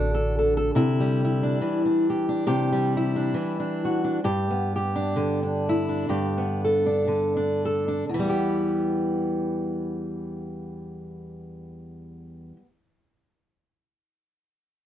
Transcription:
Already playing: upright bass A1, steel-string acoustic guitar D3 D4 F#4 A4
0.14 steel-string acoustic guitar A4
0.39 steel-string acoustic guitar A4
0.57 steel-string acoustic guitar A4
0.75 steel-string acoustic guitar C3 E4
1.00 steel-string acoustic guitar G3
1.24 steel-string acoustic guitar E4
1.43 steel-string acoustic guitar D4
1.61 steel-string acoustic guitar E3
1.85 steel-string acoustic guitar D4
2.10 steel-string acoustic guitar G4
2.29 steel-string acoustic guitar D4
2.47 steel-string acoustic guitar C3 G4
2.72 steel-string acoustic guitar G3
2.97 steel-string acoustic guitar E4
3.16 steel-string acoustic guitar D4
3.34 steel-string acoustic guitar E3
3.60 steel-string acoustic guitar D4
3.85 steel-string acoustic guitar F#4
4.04 steel-string acoustic guitar D4
4.24 steel-string acoustic guitar G2 G4
4.51 steel-string acoustic guitar B3
4.76 steel-string acoustic guitar G4
4.96 steel-string acoustic guitar D4
5.16 steel-string acoustic guitar D3
5.43 steel-string acoustic guitar D4
5.69 steel-string acoustic guitar E4
5.89 steel-string acoustic guitar D4
6.09 steel-string acoustic guitar G2 G4
6.38 steel-string acoustic guitar B3
6.65 steel-string acoustic guitar A4
6.86 steel-string acoustic guitar D4
7.07 steel-string acoustic guitar D3
7.37 steel-string acoustic guitar D4
7.65 steel-string acoustic guitar A4
7.88 steel-string acoustic guitar D4
8.09 steel-string acoustic guitar E2
8.14 steel-string acoustic guitar E3
8.19 steel-string acoustic guitar G3
8.25 steel-string acoustic guitar B3
8.29 steel-string acoustic guitar G4

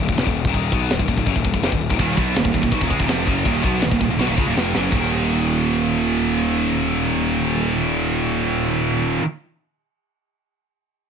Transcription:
0.03 distorted electric guitar D#2 A#2
0.09 picked electric bass D#1, distorted electric guitar A#2, kick
0.13 distorted electric guitar D#2
0.17 picked electric bass F1, distorted electric guitar F2, snare, crash
0.22 distorted electric guitar C3
0.26 picked electric bass D#1, distorted electric guitar D#2 A#2, kick
0.37 crash
0.45 picked electric bass D#1, distorted electric guitar D#2 A#2, kick
0.54 picked electric bass D#1, distorted electric guitar D#2 A#2 D#3, kick, crash
0.72 picked electric bass B1, distorted electric guitar B2 F#3 B3, kick, crash
0.90 picked electric bass D#1, distorted electric guitar D#2 A#2, snare, crash
0.99 picked electric bass D#1, distorted electric guitar D#2 A#2, kick
1.08 picked electric bass D#1, distorted electric guitar D#2 A#2, kick, crash
1.17 picked electric bass D#1, distorted electric guitar D#2 A#2, kick
1.26 picked electric bass F#1, distorted electric guitar F#2 C#3, kick, crash
1.35 picked electric bass D#1, distorted electric guitar D#2 A#2, kick
1.44 picked electric bass D#1, distorted electric guitar D#2 A#2, kick, crash
1.54 picked electric bass D#1, distorted electric guitar D#2 A#2, kick
1.62 picked electric bass F1, distorted electric guitar F2 C3, snare, crash
1.71 picked electric bass D#1, distorted electric guitar D#2 A#2, kick
1.81 crash
1.89 picked electric bass D#1, distorted electric guitar D#2 A#2, kick
1.98 picked electric bass D#1, distorted electric guitar D#2 A#2 D#3, kick, crash
2.16 picked electric bass B1, distorted electric guitar B2 F#3 B3, kick, crash
2.35 picked electric bass D#1, distorted electric guitar D#2 A#2, snare, crash
2.44 picked electric bass D#1, distorted electric guitar D#2 A#2, kick
2.53 picked electric bass D#1, distorted electric guitar D#2 A#2, kick, crash
2.62 picked electric bass D#1, distorted electric guitar D#2 A#2, kick
2.71 picked electric bass B1, distorted electric guitar B2 F#3, kick, crash
2.80 picked electric bass D#1, distorted electric guitar D#2 A#2, kick
2.88 picked electric bass C#2, distorted electric guitar C#3 G#3, kick, crash
2.97 picked electric bass D#1, distorted electric guitar D#2 A#2, kick
3.06 distorted electric guitar F2 C3 F3, snare, crash
3.11 picked electric bass F1
3.25 picked electric bass F#1, distorted electric guitar F#2 C#3 F#3, kick, crash
3.44 picked electric bass D#1, distorted electric guitar D#2 A#2 D#3, kick, crash
3.62 picked electric bass B1, distorted electric guitar B2 F#3 B3, kick, crash
3.82 picked electric bass D#1, distorted electric guitar D#2 A#2, snare, crash
3.91 picked electric bass D#1, distorted electric guitar D#2 A#2, kick
4.00 picked electric bass D#1, distorted electric guitar D#2 A#2, kick, crash
4.10 picked electric bass D#1, distorted electric guitar D#2 A#2
4.19 picked electric bass B1, distorted electric guitar B2 F#3, snare
4.28 picked electric bass D#1, distorted electric guitar D#2 A#2
4.37 picked electric bass C#2, distorted electric guitar C#3 G#3, kick
4.48 picked electric bass D#1, distorted electric guitar D#2 A#2
4.57 picked electric bass F1, distorted electric guitar F2 C3 F3, snare
4.75 picked electric bass F#1, distorted electric guitar F#2 C#3 F#3, snare
4.92 picked electric bass D#1, distorted electric guitar D#2 A#2, kick, crash
4.96 distorted electric guitar D#3

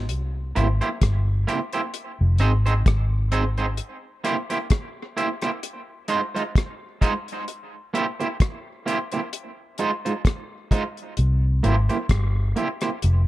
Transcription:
Already playing: fingered electric bass G#1
0.09 fingered electric bass C2, closed hi-hat
0.56 fingered electric bass G#1, clean electric guitar A#3 E4 G4 C5, closed hi-hat
0.81 clean electric guitar A#3 E4 G4 C5, closed hi-hat
1.01 fingered electric bass G1, kick, cross-stick, closed hi-hat
1.47 clean electric guitar A#3 E4 G4 C5, closed hi-hat
1.73 clean electric guitar A#3 E4 G4 C5, closed hi-hat
1.94 closed hi-hat
2.21 fingered electric bass F1
2.38 fingered electric bass G#1, clean electric guitar C4 D#4 G#4 C5, closed hi-hat
2.66 clean electric guitar C4 D#4 G#4 C5, closed hi-hat
2.86 fingered electric bass G#1, kick, cross-stick, closed hi-hat
3.32 clean electric guitar C4 D#4 G#4 C5, closed hi-hat
3.58 clean electric guitar C4 D#4 G#4 C5, closed hi-hat
3.77 closed hi-hat
4.24 clean electric guitar A#3 E4 G4 C5, closed hi-hat
4.50 clean electric guitar A#3 E4 G4 C5, closed hi-hat
4.70 kick, cross-stick, closed hi-hat
5.17 clean electric guitar A#3 E4 G4 C5, closed hi-hat
5.42 clean electric guitar A#3 E4 G4 C5, cross-stick, closed hi-hat
5.63 closed hi-hat
6.08 clean electric guitar G#3 D#4 F4 C5, closed hi-hat
6.35 clean electric guitar G#3 D#4 F4 C5, closed hi-hat
6.55 kick, cross-stick, closed hi-hat
7.01 clean electric guitar G#3 D#4 F4 C5, kick, closed hi-hat
7.28 closed hi-hat
7.48 closed hi-hat
7.94 clean electric guitar A#3 E4 G4 C5, closed hi-hat
8.20 clean electric guitar A#3 E4 G4 C5, closed hi-hat
8.40 kick, cross-stick, closed hi-hat
8.86 clean electric guitar A#3 E4 G4 C5, closed hi-hat
9.12 clean electric guitar A#3 E4 G4 C5, closed hi-hat
9.33 closed hi-hat
9.78 clean electric guitar G#3 D#4 F4 C5, closed hi-hat
10.05 clean electric guitar G#3 D#4 F4 C5, closed hi-hat
10.25 kick, cross-stick, closed hi-hat
10.71 clean electric guitar G#3 D#4 F4 C5, kick, closed hi-hat
10.97 closed hi-hat
11.17 fingered electric bass C2, closed hi-hat
11.63 fingered electric bass G#1, clean electric guitar A#3 E4 G4 C5, closed hi-hat
11.89 clean electric guitar A#3 E4 G4 C5, closed hi-hat
12.09 fingered electric bass G1, kick, cross-stick, closed hi-hat
12.56 clean electric guitar A#3 E4 G4 C5, closed hi-hat
12.81 clean electric guitar A#3 E4 G4 C5, cross-stick, closed hi-hat
13.02 fingered electric bass F1, closed hi-hat

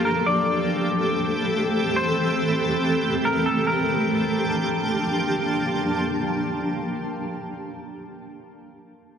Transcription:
Already playing: ambient pad F3 A#3 D4 G4 A4, synth texture A#3 A4 F5 G5
0.05 clean electric guitar A#4
0.26 ambient pad E3 A3 C4 G4 A4, synth texture C4 G5, clean electric guitar D5
1.96 clean electric guitar C5
3.25 clean electric guitar A#4
3.46 clean electric guitar A4
3.67 ambient pad F3 A#3 D4 G4 A5, synth texture A#3 F5 G5 A5, clean electric guitar A#4

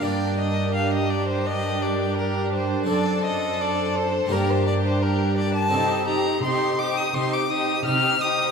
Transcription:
Already playing: viola section D4, violin section A#4
0.00 harpsichord G2 A#3 D4 G4, cello section G2, violin section G4, violin D5
0.39 violin D#5
0.75 violin F5
0.94 violin D#5
1.10 violin D5
1.28 violin C5
1.46 violin D#5
1.82 violin D5
2.17 violin A#4
2.53 violin C5
2.84 harpsichord C4 D4 A4
2.88 harpsichord F#2, cello section F#2, violin section A4 C5, violin D5
3.25 violin D#5
3.61 violin D5
3.96 violin C5
4.26 harpsichord A#3 D4 G4
4.31 harpsichord G2, cello section G2, viola section D4, violin section G4 A#4, violin A#4
4.50 violin C5
4.67 violin D5
4.86 violin C5
5.02 violin A#4
5.37 violin D5
5.55 violin A5
5.68 harpsichord C4 D#4 A4
5.72 harpsichord C3, cello section C3, viola section D#4, violin section G4 C5
6.07 viola section D#4, violin section G4 C5, violin A#5
6.43 cello section C3, harpsichord C3, viola section D#4, violin section G4 C5, violin C6
6.78 viola section D#4, violin section G4 C5, violin D6
6.97 violin D#6
7.14 harpsichord C3, cello section C3, viola section D#4, violin section G4 C5, violin C6
7.33 violin D6
7.49 viola section D#4, violin section G4 C5, violin D#6
7.85 cello section C3, harpsichord C3, viola section D#4, violin section G4 C5, violin F6
8.20 viola section D#4, violin section G4 C5, violin D#6

